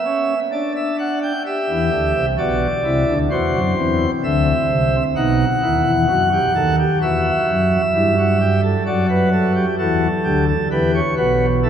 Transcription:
Already playing: E5
0.05 C#4
0.52 D4 D5
0.76 E5
0.99 F#5
1.23 G5
1.46 G4 E5
1.69 E2 E3
1.92 D2 D3
2.15 C2 C3
2.38 B1 B2 F#4 D5
2.84 C2 C3 E4
3.07 D2 D3
3.31 E2 E3 F#4 C5
3.54 F#2 F#3
3.77 E2 E3 C4
4.24 D2 D3 E5
4.69 C2 C3
5.16 B1 B2 D#4 F#5
5.62 D#2 D#3 E4
5.86 E2 E3
6.09 F#2 F#3 F#4
6.32 G4
6.55 D#2 D#3 A4
6.79 G4
7.02 E2 E3 F#4 E5
7.48 F#2 F#3
7.95 G2 G3 E4
8.18 F#4
8.41 G4
8.63 A4
8.86 F#2 F#3 F#4 D5
9.09 B4
9.33 A4
9.56 G4
9.79 E2 E3 F#4 A4
10.24 D2 D3 G4
10.48 A4
10.71 E2 E3 G4 B4
10.95 C#5
11.17 B1 B2 F#4 B4
11.63 E4 A4

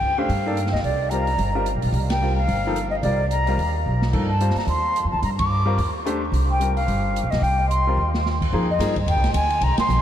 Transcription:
Already playing: G5
0.01 C#2
0.18 A3 D4 G4 C5 F5
0.29 G2, open hi-hat
0.46 A#3 D#4 A4 D5
0.57 closed hi-hat
0.66 snare
0.71 C#2 D#5, snare
0.83 C2 D5, open hi-hat
1.10 G3 C4 F4 A#4 A#5, closed hi-hat
1.27 open hi-hat
1.38 G1, open hi-hat
1.55 G3 C4 F4 A#4
1.66 closed hi-hat
1.75 A#1
1.82 B1, open hi-hat
1.92 C2, open hi-hat
2.10 G5, snare, ride
2.22 G3 C4 F4 A#4
2.38 F5
2.47 G1, open hi-hat
2.67 F3 A#3 D#4 A4
2.76 closed hi-hat
2.90 D#5
3.02 C2 G3 C4 F4 D5, open hi-hat
3.06 A#4
3.30 A#5, closed hi-hat
3.47 G3 C4 F4 A#4, open hi-hat
3.58 D#2, open hi-hat
3.86 B1
4.02 snare
4.13 G2 F3 A#3 D#4 A4, kick, crash
4.29 A5
4.41 G3 C4 F4 C5, closed hi-hat
4.50 snare
4.55 A#5, muted upright bass stroke, snare, open hi-hat
4.67 D#2 C6, open hi-hat
4.96 closed hi-hat
5.04 F2
5.11 D2 A5
5.22 G2 A#5, open hi-hat
5.38 D6, kick, ride
5.66 G3 C4 F4 A#4
5.78 D#2, open hi-hat
6.06 A3 D4 G4 C5, closed hi-hat
6.32 C2, open hi-hat
6.51 G5
6.60 G3 C4 F4 A#4, closed hi-hat
6.75 F5, open hi-hat
6.88 G1, open hi-hat
7.16 closed hi-hat
7.23 A#1
7.30 B1 D#5, snare, open hi-hat
7.42 C2 G5, open hi-hat
7.69 C6, closed hi-hat
7.87 G3 C4 F4 A#4
7.97 D#2
8.14 snare
8.26 snare
8.42 kick, crash
8.53 F2 F3 A#3 D#4 G#4
8.70 D#5
8.79 G2 F3 A#3 D#4 G#4, snare, hi-hat pedal, ride
8.96 kick, ride
9.06 D#2 G5, ride
9.16 C2
9.24 G#1, snare, ride
9.34 D2 G#5, hi-hat pedal, ride
9.50 ride
9.61 C2 A#5, ride
9.78 C6, muted upright bass stroke, snare, ride
9.89 A#1, hi-hat pedal
9.98 G#1

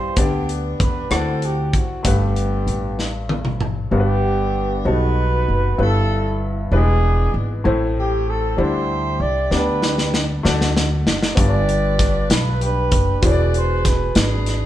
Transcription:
Already playing: G2 G3 C4 E4 G4 C5
0.16 D2 D3 B3 D4 G4 D5, kick, closed hi-hat
0.49 closed hi-hat
0.79 E2 B4, kick, cross-stick, closed hi-hat
1.10 D2 D3 C4 E4 F#4 A4 D5 F#5, cross-stick, closed hi-hat
1.42 G4, closed hi-hat
1.73 F#4, kick, closed hi-hat
2.03 G1 G2 A3 B3 G4 F#5, kick, closed hi-hat
2.07 D4 B4
2.36 closed hi-hat
2.67 A1, closed hi-hat
2.99 snare
3.29 high tom
3.45 mid tom
3.61 mid tom
3.91 G1 G2 G3 B3 D4 G4 A#4
4.00 B4
4.85 B1 B2 G3 B3 D#4 F#4 A4 B4
5.48 F#1
5.78 G1 G2 G3 B3 E4 B4
5.83 A4
6.71 E1 E3 G3 B3 D4 E4 G#4 B4
6.77 G#3
7.34 G#1
7.64 A1 A2 A3 C4 E4 C5
7.98 G4
8.28 A4
8.57 D2 D3 G3 D4 E4 C5
8.61 E4 G4
9.20 C2 D5
9.51 D2 D3 B3 D4 G4 B4 D5, snare
9.82 snare
9.98 snare
10.14 snare
10.43 D2 D3 A3 D4 F#4 D5, snare
10.61 snare
10.77 snare
11.06 F#1, snare
11.23 snare
11.35 G1 G2 B3 D4 G4 B4 D5, kick, closed hi-hat
11.39 D5
11.69 closed hi-hat
11.99 kick, snare, closed hi-hat
12.30 B1 B4, snare, closed hi-hat
12.61 D4 G4 B4, closed hi-hat
12.92 F#1, kick, closed hi-hat
13.22 E1 B2 E3 E4 G#4 B4 D5, kick, closed hi-hat
13.26 C5
13.32 D5
13.54 C5, closed hi-hat
13.85 B4, kick, snare, closed hi-hat
14.15 G#1 D4 G#4, snare, closed hi-hat
14.20 B4
14.46 snare, closed hi-hat

